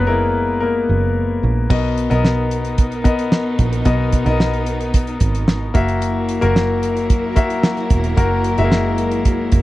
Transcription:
Already playing: picked electric bass F#1, grand piano A#3 B3 C#4 D#4 A#4 B4 C#5 D#5
0.07 grand piano G#3 A#3 E4 A#4
0.60 grand piano A#3 A#4
0.89 picked electric bass F#1
1.43 picked electric bass A#1
1.70 picked electric bass B1, grand piano B2 B3 A#4 D#5, string section B3 D#4 A#4, kick, crash
1.98 closed hi-hat
2.10 picked electric bass B1, grand piano B3 A#4 D#5, closed hi-hat
2.25 snare
2.51 closed hi-hat
2.65 closed hi-hat
2.78 kick, closed hi-hat
2.92 closed hi-hat
3.04 grand piano B3 A#4 D#5, kick, closed hi-hat
3.19 closed hi-hat
3.32 snare
3.59 picked electric bass A#1, kick, closed hi-hat
3.73 closed hi-hat
3.85 picked electric bass B1, grand piano B2 B3 A#4 D#5, kick, closed hi-hat
4.12 kick, closed hi-hat
4.26 picked electric bass B1, grand piano B3 A#4 D#5, closed hi-hat
4.40 snare
4.54 closed hi-hat
4.66 closed hi-hat
4.81 closed hi-hat
4.94 kick, closed hi-hat
5.07 closed hi-hat
5.20 picked electric bass G#1, kick, closed hi-hat
5.35 closed hi-hat
5.48 snare
5.74 picked electric bass F#1, string section F#3 E4 A#4, grand piano A#3 F#4 E5, kick, closed hi-hat
5.88 closed hi-hat
6.02 closed hi-hat
6.29 closed hi-hat
6.41 picked electric bass F#1, grand piano A#3 F#4 A#4, closed hi-hat
6.56 snare
6.83 closed hi-hat
6.97 closed hi-hat
7.10 kick, closed hi-hat
7.35 grand piano A#3 F#4 E5, kick, closed hi-hat
7.50 closed hi-hat
7.63 snare
7.77 snare, closed hi-hat
7.90 picked electric bass E1, kick, closed hi-hat
8.04 closed hi-hat
8.17 picked electric bass F#1, grand piano A#3 F#4 A#4, kick, closed hi-hat
8.44 closed hi-hat
8.58 picked electric bass F#1, grand piano G#3 F#4 E5, closed hi-hat
8.64 grand piano A#3
8.72 snare
8.98 closed hi-hat
9.11 closed hi-hat
9.25 kick, closed hi-hat
9.52 picked electric bass F#1, kick, closed hi-hat

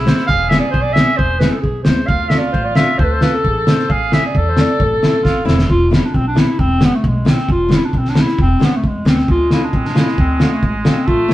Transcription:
Already playing: upright bass B1, cor anglais E4
0.04 nylon-string guitar G#3 B3 E4, clarinet C5, snare
0.18 snare
0.27 upright bass E1, cor anglais G#4, clarinet F5, kick
0.50 nylon-string guitar G#3 B3 E4, clarinet E5, snare
0.60 clarinet D5
0.71 upright bass B1, clarinet C5, kick
0.82 clarinet D5
0.93 nylon-string guitar G#3 B3 E4, clarinet E5, snare
1.17 upright bass E1, clarinet C5, kick
1.39 nylon-string guitar G#3 B3 E4, clarinet B4, snare
1.51 clarinet A4
1.62 upright bass B1, clarinet G#4, kick
1.84 upright bass D2, nylon-string guitar G#3 B3 E4, clarinet C5, snare
2.07 upright bass D2, cor anglais F4, clarinet F5, kick
2.29 nylon-string guitar A3 D4 F4, clarinet E5, snare
2.39 clarinet D5
2.52 upright bass A1, clarinet C5, kick
2.64 clarinet D5
2.75 nylon-string guitar A3 D4 F4, clarinet E5, snare
2.98 upright bass D2, cor anglais A4, clarinet C5, kick
3.04 clarinet B4
3.12 clarinet C5
3.21 nylon-string guitar A3 D4 F4, clarinet B4, snare
3.35 clarinet A4
3.44 upright bass A1, kick
3.48 clarinet G#4
3.67 nylon-string guitar A3 D4 E4, clarinet C5, snare
3.79 snare
3.90 upright bass A1, cor anglais G#4, clarinet F5, kick
4.12 nylon-string guitar A3 C4 E4, clarinet E5, snare
4.26 clarinet D5
4.35 upright bass E2, cor anglais A4, kick
4.49 clarinet C5
4.57 nylon-string guitar A3 C4 E4, snare
4.61 clarinet D5
4.80 upright bass A1, clarinet A4, kick
5.02 upright bass A1, nylon-string guitar A3 C4 E4, snare
5.23 upright bass G#1, cor anglais F4, kick, snare
5.45 upright bass E1, nylon-string guitar A3 C4 E4, cor anglais E4, snare
5.59 snare
5.70 upright bass E1, clarinet F4, kick
5.91 nylon-string guitar G#3 B3 E4, snare
5.96 clarinet E4
6.05 clarinet D4
6.14 upright bass B1, clarinet C4, kick
6.28 clarinet D4
6.35 nylon-string guitar G#3 B3 E4, clarinet E4, snare
6.59 upright bass E1, clarinet C4, kick
6.80 nylon-string guitar G#3 B3 D4, snare
6.85 clarinet B3
6.95 clarinet A3
7.04 upright bass B1, clarinet G#3, kick
7.25 nylon-string guitar G#3 B3 E4, snare
7.30 clarinet C4
7.37 snare
7.49 upright bass E1, clarinet F4, kick
7.68 nylon-string guitar G#3 B3 E4, snare
7.75 clarinet E4
7.85 clarinet D4
7.93 upright bass B1, kick
7.98 clarinet C4
8.05 snare
8.10 clarinet D4
8.14 nylon-string guitar G#3 B3 E4, snare
8.21 clarinet E4
8.28 snare
8.39 upright bass E1, clarinet C4, kick
8.60 nylon-string guitar G#3 B3 D4, snare
8.65 clarinet B3
8.76 clarinet A3
8.84 upright bass E2, clarinet G#3, kick
9.05 upright bass D2, nylon-string guitar G#3 B3 D4, clarinet C4, snare
9.18 snare
9.28 upright bass D2, cor anglais G#3, clarinet F4, kick
9.51 nylon-string guitar A3 D4 F4, clarinet E4, snare
9.64 clarinet D4
9.73 upright bass A1, clarinet C4, kick
9.85 clarinet D4, snare
9.95 nylon-string guitar A3 D4 F4, clarinet E4, snare
10.07 snare
10.18 upright bass D2, clarinet C4, kick
10.39 nylon-string guitar A3 D4 F4, clarinet B3, snare
10.53 clarinet A3
10.63 upright bass A1, clarinet G#3, kick
10.84 nylon-string guitar A3 D4 F4, clarinet C4, snare
11.07 upright bass A1, cor anglais A3, clarinet F4, kick
11.28 nylon-string guitar A3 C4 E4, snare

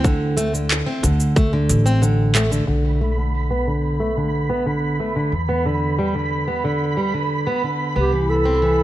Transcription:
Already playing: upright bass D2
0.04 steel-string acoustic guitar D3, kick, shaker
0.37 steel-string acoustic guitar A3, closed hi-hat, shaker
0.54 steel-string acoustic guitar D3, shaker
0.71 clap, shaker
0.86 steel-string acoustic guitar C4
1.03 upright bass D2, steel-string acoustic guitar D3, kick, closed hi-hat, shaker
1.20 shaker
1.36 steel-string acoustic guitar A3, kick, shaker
1.53 steel-string acoustic guitar D3
1.69 upright bass A1, closed hi-hat, shaker
1.86 steel-string acoustic guitar C4, shaker
2.02 steel-string acoustic guitar D3, shaker
2.35 steel-string acoustic guitar A3, clap, closed hi-hat, shaker
2.51 steel-string acoustic guitar D3, shaker
2.67 upright bass B1, steel-string acoustic guitar D3, synth texture B5
3.01 steel-string acoustic guitar A3
3.17 steel-string acoustic guitar D3
3.51 steel-string acoustic guitar B3
3.67 steel-string acoustic guitar D3
4.00 steel-string acoustic guitar A3
4.17 steel-string acoustic guitar D3
4.50 steel-string acoustic guitar B3
4.66 steel-string acoustic guitar D3
5.00 steel-string acoustic guitar A3
5.16 steel-string acoustic guitar D3
5.32 upright bass E2
5.49 steel-string acoustic guitar B3
5.66 steel-string acoustic guitar D3
5.99 steel-string acoustic guitar G3
6.15 steel-string acoustic guitar D3
6.48 steel-string acoustic guitar B3
6.64 steel-string acoustic guitar D3
6.97 steel-string acoustic guitar G3
7.14 steel-string acoustic guitar D3
7.47 steel-string acoustic guitar B3
7.63 steel-string acoustic guitar D3
7.96 upright bass C2, steel-string acoustic guitar B3, clarinet G4
8.12 steel-string acoustic guitar E3
8.30 clarinet A4
8.45 steel-string acoustic guitar C4
8.62 steel-string acoustic guitar E3

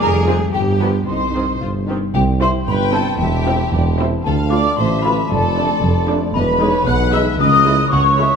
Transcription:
Already playing: harp C5
0.00 tuba F1, harp F2, double bass section F2, cello section G#4, violin section A#4, flute section A#5
0.19 harp C4
0.26 viola section G#3 C4, violin section F4 G#4, flute section G#5
0.37 harp F4
0.53 tuba G1, double bass section G2, harp G2, cello section G4, violin section G4, flute section G5
0.72 harp B3
0.79 viola section F3 B3, violin section D4 B4, flute section B5
0.89 harp F4 G4
1.07 tuba C2, double bass section C2, harp C3, cello section D#4, violin section C5, flute section C6
1.26 harp G3
1.32 viola section D#3 C4, violin section D#4
1.43 harp C4
1.61 double bass section G1, tuba G1, harp D#4, cello section F4
1.79 harp G4
1.86 viola section D#3 C4, violin section D#4, cello section G4
1.96 harp C4
2.14 tuba C2, double bass section C2, cello section C2, harp C3, violin section G4, flute section G5, glockenspiel G5
2.28 harp C4
2.41 viola section C4 E4, harp G4, violin section C5, flute section C6, glockenspiel C6
2.54 harp E5
2.66 tuba G1, double bass section G1, cello section G2, violin section B4 G5, harp G5, flute section B5, glockenspiel B5
2.80 harp E5
2.92 viola section C4 E4, violin section A4, glockenspiel A5, flute section A5
3.07 harp E4
3.18 tuba E1, double bass section E1, cello section E2, harp E3, violin section G4 E5, glockenspiel G5, flute section G5
3.33 harp E4
3.46 viola section C4 E4, harp C5
3.72 tuba E1, double bass section E1, cello section E2, violin section D5, harp C6
3.85 harp G5
3.98 viola section C4 E4, violin section C5, harp E5
4.12 harp G4
4.24 double bass section D2, tuba D2, cello section D2, harp D3, violin section A4 F5, glockenspiel A5, flute section A5
4.38 harp A3
4.51 viola section A3 F4, harp D5, violin section D5, glockenspiel D6, flute section D6
4.65 harp F5
4.77 tuba A1, double bass section A1, cello section A2, violin section C5 E5, glockenspiel C6, flute section C6
4.91 harp F5
5.02 viola section A3 F4, violin section B4, glockenspiel B5, flute section B5
5.17 harp F4
5.28 tuba F1, double bass section F1, cello section F2, harp F3, violin section A4 D5, glockenspiel A5, flute section A5
5.44 harp F4
5.57 viola section A3 D4, harp A4
5.82 tuba F1, double bass section F1, cello section F2, harp A5
6.09 viola section A3 D4, harp F5
6.23 harp D5
6.34 tuba E1, double bass section E1, cello section E2, harp E3, violin section B4 D#5, glockenspiel B5, flute section B5
6.48 harp D#4
6.61 viola section G#3 D#4, harp G#4, violin section C#5
6.87 tuba B1, double bass section B1, cello section B2, violin section B4 F#5, harp G#5, glockenspiel F#6, flute section F#6
7.00 harp B5
7.12 viola section G#3 D#4, harp D#5, violin section E5, glockenspiel E6, flute section E6
7.26 harp B4
7.38 double bass section C#2, tuba C#2, harp C#3, cello section C#3, violin section A#4 D#5, flute section D#6, glockenspiel D#6
7.51 harp G#3
7.65 viola section G#3 E4, harp A#4
7.91 tuba C#2, double bass section C#2, cello section C#3, violin section C#5 F#5, harp A#5, flute section C#6, glockenspiel C#6
8.03 harp E5
8.17 viola section G#3 E4, harp G#4, violin section E5
8.30 harp E4

